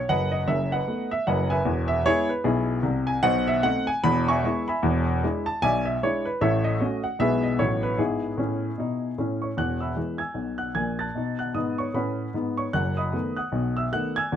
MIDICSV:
0, 0, Header, 1, 2, 480
1, 0, Start_track
1, 0, Key_signature, 4, "major"
1, 0, Tempo, 395778
1, 92, Time_signature, 4, 2, 24, 8
1, 17417, End_track
2, 0, Start_track
2, 0, Title_t, "Grand piano"
2, 0, Program_c, 0, 0
2, 104, Note_on_c, 0, 30, 60
2, 111, Note_on_c, 0, 78, 103
2, 112, Note_on_c, 0, 42, 65
2, 122, Note_on_c, 0, 71, 71
2, 122, Note_on_c, 0, 75, 73
2, 329, Control_c, 0, 64, 127
2, 364, Note_off_c, 0, 75, 0
2, 375, Note_off_c, 0, 71, 0
2, 382, Note_on_c, 0, 75, 80
2, 389, Note_off_c, 0, 78, 0
2, 484, Note_off_c, 0, 30, 0
2, 489, Note_off_c, 0, 42, 0
2, 574, Note_off_c, 0, 75, 0
2, 574, Note_on_c, 0, 30, 71
2, 576, Note_on_c, 0, 42, 69
2, 577, Note_on_c, 0, 76, 91
2, 583, Control_c, 0, 64, 0
2, 862, Note_off_c, 0, 76, 0
2, 876, Note_on_c, 0, 78, 84
2, 893, Note_on_c, 0, 71, 58
2, 894, Note_on_c, 0, 75, 61
2, 958, Note_off_c, 0, 30, 0
2, 959, Note_off_c, 0, 42, 0
2, 1060, Note_on_c, 0, 63, 42
2, 1064, Note_on_c, 0, 57, 45
2, 1067, Note_on_c, 0, 59, 46
2, 1322, Note_off_c, 0, 63, 0
2, 1324, Note_off_c, 0, 71, 0
2, 1325, Note_off_c, 0, 57, 0
2, 1325, Note_off_c, 0, 75, 0
2, 1327, Note_off_c, 0, 59, 0
2, 1348, Note_off_c, 0, 78, 0
2, 1351, Note_on_c, 0, 76, 90
2, 1539, Note_off_c, 0, 76, 0
2, 1540, Note_on_c, 0, 78, 85
2, 1543, Note_on_c, 0, 30, 77
2, 1547, Note_on_c, 0, 42, 68
2, 1558, Note_on_c, 0, 75, 71
2, 1562, Note_on_c, 0, 71, 64
2, 1811, Note_off_c, 0, 71, 0
2, 1813, Note_off_c, 0, 75, 0
2, 1819, Note_on_c, 0, 80, 82
2, 1823, Note_off_c, 0, 78, 0
2, 1829, Note_on_c, 0, 71, 73
2, 1829, Note_on_c, 0, 76, 72
2, 1923, Note_off_c, 0, 30, 0
2, 1925, Note_off_c, 0, 42, 0
2, 2001, Note_on_c, 0, 40, 78
2, 2005, Note_on_c, 0, 28, 74
2, 2231, Control_c, 0, 64, 127
2, 2260, Note_off_c, 0, 76, 0
2, 2271, Note_off_c, 0, 71, 0
2, 2278, Note_on_c, 0, 76, 93
2, 2300, Note_off_c, 0, 80, 0
2, 2414, Note_off_c, 0, 40, 0
2, 2417, Note_off_c, 0, 28, 0
2, 2482, Note_off_c, 0, 76, 0
2, 2490, Note_on_c, 0, 56, 57
2, 2493, Note_on_c, 0, 59, 48
2, 2494, Note_on_c, 0, 73, 114
2, 2502, Note_on_c, 0, 68, 83
2, 2504, Control_c, 0, 64, 0
2, 2507, Note_on_c, 0, 64, 83
2, 2755, Note_off_c, 0, 56, 0
2, 2757, Note_off_c, 0, 59, 0
2, 2764, Note_off_c, 0, 68, 0
2, 2767, Note_off_c, 0, 64, 0
2, 2780, Note_off_c, 0, 73, 0
2, 2781, Note_on_c, 0, 71, 69
2, 2959, Note_on_c, 0, 47, 85
2, 2962, Note_on_c, 0, 68, 82
2, 2965, Note_on_c, 0, 35, 82
2, 2974, Note_off_c, 0, 71, 0
2, 2978, Note_on_c, 0, 64, 65
2, 2985, Note_on_c, 0, 59, 64
2, 3373, Note_off_c, 0, 47, 0
2, 3376, Note_off_c, 0, 35, 0
2, 3422, Note_off_c, 0, 64, 0
2, 3425, Note_off_c, 0, 59, 0
2, 3429, Note_on_c, 0, 36, 77
2, 3431, Note_on_c, 0, 48, 84
2, 3447, Note_off_c, 0, 68, 0
2, 3721, Note_on_c, 0, 80, 89
2, 3822, Note_off_c, 0, 36, 0
2, 3824, Note_off_c, 0, 48, 0
2, 3912, Note_on_c, 0, 47, 96
2, 3914, Note_on_c, 0, 78, 117
2, 3916, Note_on_c, 0, 35, 84
2, 3923, Note_off_c, 0, 80, 0
2, 3929, Note_on_c, 0, 72, 84
2, 3929, Note_on_c, 0, 75, 78
2, 4151, Control_c, 0, 64, 127
2, 4197, Note_off_c, 0, 72, 0
2, 4197, Note_off_c, 0, 75, 0
2, 4210, Note_off_c, 0, 78, 0
2, 4214, Note_on_c, 0, 76, 94
2, 4329, Note_off_c, 0, 47, 0
2, 4331, Note_off_c, 0, 35, 0
2, 4405, Note_on_c, 0, 78, 107
2, 4407, Note_on_c, 0, 57, 55
2, 4410, Note_off_c, 0, 76, 0
2, 4412, Note_on_c, 0, 60, 61
2, 4415, Note_on_c, 0, 63, 58
2, 4422, Control_c, 0, 64, 0
2, 4672, Note_off_c, 0, 57, 0
2, 4676, Note_off_c, 0, 60, 0
2, 4678, Note_off_c, 0, 63, 0
2, 4695, Note_off_c, 0, 78, 0
2, 4695, Note_on_c, 0, 80, 93
2, 4890, Note_off_c, 0, 80, 0
2, 4895, Note_on_c, 0, 28, 85
2, 4895, Note_on_c, 0, 40, 99
2, 4895, Note_on_c, 0, 83, 114
2, 5111, Control_c, 0, 64, 127
2, 5180, Note_off_c, 0, 83, 0
2, 5196, Note_on_c, 0, 85, 98
2, 5204, Note_on_c, 0, 76, 75
2, 5208, Note_on_c, 0, 80, 78
2, 5301, Note_off_c, 0, 40, 0
2, 5302, Note_off_c, 0, 28, 0
2, 5388, Note_on_c, 0, 56, 54
2, 5390, Control_c, 0, 64, 0
2, 5398, Note_on_c, 0, 59, 47
2, 5399, Note_on_c, 0, 64, 53
2, 5638, Note_off_c, 0, 76, 0
2, 5640, Note_off_c, 0, 80, 0
2, 5647, Note_off_c, 0, 56, 0
2, 5655, Note_off_c, 0, 59, 0
2, 5655, Note_off_c, 0, 64, 0
2, 5667, Note_off_c, 0, 85, 0
2, 5673, Note_on_c, 0, 83, 83
2, 5685, Note_on_c, 0, 76, 67
2, 5691, Note_on_c, 0, 80, 62
2, 5854, Note_on_c, 0, 40, 96
2, 5860, Note_on_c, 0, 28, 81
2, 6080, Control_c, 0, 64, 127
2, 6261, Note_off_c, 0, 40, 0
2, 6264, Note_off_c, 0, 28, 0
2, 6349, Note_on_c, 0, 56, 61
2, 6350, Control_c, 0, 64, 0
2, 6354, Note_on_c, 0, 62, 52
2, 6358, Note_on_c, 0, 64, 53
2, 6582, Note_off_c, 0, 76, 0
2, 6585, Note_off_c, 0, 80, 0
2, 6608, Note_off_c, 0, 56, 0
2, 6612, Note_off_c, 0, 62, 0
2, 6615, Note_off_c, 0, 64, 0
2, 6623, Note_on_c, 0, 81, 82
2, 6625, Note_off_c, 0, 83, 0
2, 6813, Note_off_c, 0, 81, 0
2, 6819, Note_on_c, 0, 80, 111
2, 6820, Note_on_c, 0, 47, 76
2, 6824, Note_on_c, 0, 35, 80
2, 6829, Note_on_c, 0, 74, 75
2, 6835, Note_on_c, 0, 76, 73
2, 7081, Note_off_c, 0, 76, 0
2, 7087, Note_off_c, 0, 74, 0
2, 7099, Note_on_c, 0, 76, 82
2, 7101, Note_off_c, 0, 80, 0
2, 7223, Note_off_c, 0, 47, 0
2, 7226, Note_off_c, 0, 35, 0
2, 7291, Note_off_c, 0, 76, 0
2, 7314, Note_on_c, 0, 56, 49
2, 7317, Note_on_c, 0, 73, 91
2, 7318, Note_on_c, 0, 62, 52
2, 7328, Note_on_c, 0, 64, 57
2, 7571, Note_off_c, 0, 56, 0
2, 7574, Note_off_c, 0, 62, 0
2, 7581, Note_off_c, 0, 64, 0
2, 7585, Note_on_c, 0, 71, 78
2, 7590, Note_off_c, 0, 73, 0
2, 7773, Note_on_c, 0, 33, 81
2, 7774, Note_off_c, 0, 71, 0
2, 7779, Note_on_c, 0, 45, 81
2, 7779, Note_on_c, 0, 76, 92
2, 7788, Note_on_c, 0, 73, 73
2, 7789, Note_on_c, 0, 69, 74
2, 8016, Control_c, 0, 64, 127
2, 8046, Note_off_c, 0, 69, 0
2, 8046, Note_off_c, 0, 73, 0
2, 8058, Note_on_c, 0, 75, 88
2, 8061, Note_off_c, 0, 76, 0
2, 8179, Note_off_c, 0, 33, 0
2, 8182, Note_off_c, 0, 45, 0
2, 8253, Note_on_c, 0, 57, 46
2, 8258, Control_c, 0, 64, 0
2, 8265, Note_on_c, 0, 61, 47
2, 8265, Note_on_c, 0, 66, 50
2, 8516, Note_off_c, 0, 57, 0
2, 8524, Note_off_c, 0, 66, 0
2, 8525, Note_off_c, 0, 61, 0
2, 8533, Note_on_c, 0, 78, 72
2, 8537, Note_off_c, 0, 75, 0
2, 8721, Note_on_c, 0, 56, 43
2, 8723, Note_on_c, 0, 35, 67
2, 8728, Note_off_c, 0, 78, 0
2, 8728, Note_on_c, 0, 47, 82
2, 8729, Note_on_c, 0, 76, 100
2, 8731, Note_on_c, 0, 59, 43
2, 8742, Note_on_c, 0, 71, 73
2, 8743, Note_on_c, 0, 68, 70
2, 8746, Note_on_c, 0, 64, 41
2, 8960, Control_c, 0, 64, 127
2, 8987, Note_off_c, 0, 56, 0
2, 8994, Note_off_c, 0, 59, 0
2, 9002, Note_off_c, 0, 71, 0
2, 9003, Note_off_c, 0, 68, 0
2, 9005, Note_off_c, 0, 64, 0
2, 9013, Note_on_c, 0, 75, 70
2, 9015, Note_off_c, 0, 76, 0
2, 9133, Note_off_c, 0, 35, 0
2, 9136, Note_off_c, 0, 47, 0
2, 9202, Note_on_c, 0, 54, 35
2, 9203, Note_on_c, 0, 33, 64
2, 9205, Note_on_c, 0, 45, 76
2, 9205, Note_on_c, 0, 59, 41
2, 9205, Note_on_c, 0, 73, 85
2, 9207, Note_off_c, 0, 75, 0
2, 9219, Note_on_c, 0, 63, 39
2, 9225, Control_c, 0, 64, 0
2, 9446, Control_c, 0, 64, 127
2, 9467, Note_off_c, 0, 54, 0
2, 9470, Note_off_c, 0, 59, 0
2, 9479, Note_off_c, 0, 63, 0
2, 9493, Note_off_c, 0, 73, 0
2, 9497, Note_on_c, 0, 71, 79
2, 9613, Note_off_c, 0, 33, 0
2, 9614, Note_off_c, 0, 45, 0
2, 9679, Note_on_c, 0, 44, 63
2, 9685, Note_on_c, 0, 68, 74
2, 9689, Note_off_c, 0, 71, 0
2, 9695, Note_on_c, 0, 59, 48
2, 9695, Note_on_c, 0, 64, 58
2, 9701, Control_c, 0, 64, 0
2, 9905, Control_c, 0, 64, 127
2, 10066, Note_off_c, 0, 44, 0
2, 10157, Note_on_c, 0, 45, 64
2, 10177, Note_on_c, 0, 61, 61
2, 10182, Control_c, 0, 64, 0
2, 10545, Note_off_c, 0, 45, 0
2, 10557, Note_off_c, 0, 61, 0
2, 10647, Note_on_c, 0, 47, 58
2, 10668, Note_on_c, 0, 63, 63
2, 11031, Note_off_c, 0, 47, 0
2, 11044, Note_off_c, 0, 63, 0
2, 11083, Note_off_c, 0, 59, 0
2, 11083, Note_off_c, 0, 64, 0
2, 11126, Note_off_c, 0, 68, 0
2, 11136, Note_on_c, 0, 45, 54
2, 11156, Note_on_c, 0, 61, 52
2, 11421, Note_on_c, 0, 85, 52
2, 11440, Note_on_c, 0, 73, 43
2, 11517, Note_off_c, 0, 45, 0
2, 11529, Note_off_c, 0, 61, 0
2, 11608, Note_off_c, 0, 73, 0
2, 11608, Note_on_c, 0, 40, 62
2, 11611, Note_off_c, 0, 85, 0
2, 11618, Note_on_c, 0, 28, 50
2, 11619, Note_on_c, 0, 90, 79
2, 11629, Note_on_c, 0, 78, 61
2, 11828, Control_c, 0, 64, 127
2, 11886, Note_off_c, 0, 78, 0
2, 11891, Note_on_c, 0, 88, 46
2, 11900, Note_off_c, 0, 90, 0
2, 11905, Note_on_c, 0, 83, 40
2, 11906, Note_on_c, 0, 76, 37
2, 12016, Note_off_c, 0, 40, 0
2, 12022, Note_off_c, 0, 28, 0
2, 12080, Note_on_c, 0, 56, 35
2, 12081, Note_on_c, 0, 52, 34
2, 12093, Note_on_c, 0, 59, 36
2, 12099, Control_c, 0, 64, 0
2, 12347, Note_off_c, 0, 52, 0
2, 12347, Note_off_c, 0, 56, 0
2, 12347, Note_off_c, 0, 83, 0
2, 12348, Note_off_c, 0, 76, 0
2, 12350, Note_on_c, 0, 92, 66
2, 12352, Note_off_c, 0, 88, 0
2, 12356, Note_off_c, 0, 59, 0
2, 12363, Note_on_c, 0, 80, 48
2, 12370, Note_on_c, 0, 88, 42
2, 12544, Note_on_c, 0, 35, 48
2, 12551, Note_on_c, 0, 47, 44
2, 12816, Note_off_c, 0, 80, 0
2, 12820, Note_off_c, 0, 88, 0
2, 12831, Note_on_c, 0, 90, 64
2, 12841, Note_on_c, 0, 78, 47
2, 12843, Note_off_c, 0, 92, 0
2, 12964, Note_off_c, 0, 35, 0
2, 12967, Note_off_c, 0, 47, 0
2, 13028, Note_off_c, 0, 78, 0
2, 13034, Note_on_c, 0, 34, 43
2, 13034, Note_on_c, 0, 46, 54
2, 13035, Note_on_c, 0, 92, 70
2, 13037, Note_off_c, 0, 90, 0
2, 13052, Note_on_c, 0, 80, 53
2, 13318, Note_off_c, 0, 80, 0
2, 13329, Note_off_c, 0, 92, 0
2, 13329, Note_on_c, 0, 93, 60
2, 13346, Note_on_c, 0, 90, 51
2, 13347, Note_on_c, 0, 81, 50
2, 13425, Note_off_c, 0, 34, 0
2, 13425, Note_off_c, 0, 46, 0
2, 13523, Note_on_c, 0, 47, 55
2, 13549, Note_on_c, 0, 63, 56
2, 13747, Control_c, 0, 64, 127
2, 13789, Note_off_c, 0, 81, 0
2, 13789, Note_off_c, 0, 90, 0
2, 13812, Note_on_c, 0, 90, 63
2, 13813, Note_off_c, 0, 93, 0
2, 13828, Note_on_c, 0, 78, 49
2, 13911, Note_off_c, 0, 47, 0
2, 13926, Note_off_c, 0, 63, 0
2, 14000, Note_on_c, 0, 44, 59
2, 14002, Note_on_c, 0, 87, 67
2, 14003, Note_off_c, 0, 78, 0
2, 14008, Note_off_c, 0, 90, 0
2, 14017, Note_on_c, 0, 75, 54
2, 14025, Control_c, 0, 64, 0
2, 14025, Note_on_c, 0, 59, 60
2, 14282, Note_off_c, 0, 75, 0
2, 14291, Note_on_c, 0, 85, 62
2, 14294, Note_off_c, 0, 87, 0
2, 14308, Note_on_c, 0, 73, 45
2, 14389, Note_off_c, 0, 44, 0
2, 14404, Note_off_c, 0, 59, 0
2, 14478, Note_on_c, 0, 45, 49
2, 14483, Note_off_c, 0, 73, 0
2, 14487, Note_on_c, 0, 83, 62
2, 14488, Note_off_c, 0, 85, 0
2, 14499, Note_on_c, 0, 78, 44
2, 14504, Note_on_c, 0, 71, 47
2, 14508, Note_on_c, 0, 61, 58
2, 14868, Note_off_c, 0, 45, 0
2, 14886, Note_off_c, 0, 61, 0
2, 14943, Note_off_c, 0, 78, 0
2, 14945, Note_off_c, 0, 71, 0
2, 14966, Note_on_c, 0, 44, 57
2, 14970, Note_off_c, 0, 83, 0
2, 14987, Note_on_c, 0, 59, 60
2, 15251, Note_on_c, 0, 85, 68
2, 15263, Note_on_c, 0, 73, 50
2, 15353, Note_off_c, 0, 44, 0
2, 15366, Note_off_c, 0, 59, 0
2, 15441, Note_off_c, 0, 73, 0
2, 15442, Note_on_c, 0, 30, 59
2, 15444, Note_on_c, 0, 90, 85
2, 15448, Note_off_c, 0, 85, 0
2, 15449, Note_on_c, 0, 42, 65
2, 15465, Note_on_c, 0, 78, 66
2, 15667, Control_c, 0, 64, 127
2, 15726, Note_off_c, 0, 78, 0
2, 15730, Note_on_c, 0, 87, 63
2, 15735, Note_off_c, 0, 90, 0
2, 15740, Note_on_c, 0, 75, 51
2, 15744, Note_on_c, 0, 83, 57
2, 15855, Note_off_c, 0, 30, 0
2, 15859, Note_off_c, 0, 42, 0
2, 15925, Note_on_c, 0, 51, 41
2, 15928, Note_on_c, 0, 57, 35
2, 15933, Note_on_c, 0, 59, 45
2, 15952, Control_c, 0, 64, 0
2, 16186, Note_off_c, 0, 75, 0
2, 16188, Note_off_c, 0, 83, 0
2, 16191, Note_off_c, 0, 51, 0
2, 16193, Note_off_c, 0, 57, 0
2, 16197, Note_off_c, 0, 59, 0
2, 16199, Note_off_c, 0, 87, 0
2, 16209, Note_on_c, 0, 90, 63
2, 16218, Note_on_c, 0, 87, 52
2, 16229, Note_on_c, 0, 78, 52
2, 16397, Note_on_c, 0, 35, 66
2, 16398, Note_on_c, 0, 47, 58
2, 16665, Note_off_c, 0, 87, 0
2, 16671, Note_off_c, 0, 78, 0
2, 16695, Note_off_c, 0, 90, 0
2, 16695, Note_on_c, 0, 88, 74
2, 16711, Note_on_c, 0, 76, 54
2, 16812, Note_off_c, 0, 35, 0
2, 16813, Note_off_c, 0, 47, 0
2, 16885, Note_off_c, 0, 76, 0
2, 16887, Note_on_c, 0, 51, 48
2, 16890, Note_on_c, 0, 57, 35
2, 16891, Note_off_c, 0, 88, 0
2, 16891, Note_on_c, 0, 90, 84
2, 16894, Note_on_c, 0, 59, 40
2, 16901, Note_on_c, 0, 78, 61
2, 17152, Note_off_c, 0, 51, 0
2, 17155, Note_off_c, 0, 57, 0
2, 17158, Note_off_c, 0, 59, 0
2, 17164, Note_off_c, 0, 78, 0
2, 17175, Note_on_c, 0, 92, 84
2, 17179, Note_off_c, 0, 90, 0
2, 17190, Note_on_c, 0, 80, 63
2, 17195, Note_on_c, 0, 88, 60
2, 17369, Note_on_c, 0, 40, 74
2, 17371, Note_on_c, 0, 28, 66
2, 17417, Note_off_c, 0, 28, 0
2, 17417, Note_off_c, 0, 40, 0
2, 17417, Note_off_c, 0, 80, 0
2, 17417, Note_off_c, 0, 88, 0
2, 17417, Note_off_c, 0, 92, 0
2, 17417, End_track
0, 0, End_of_file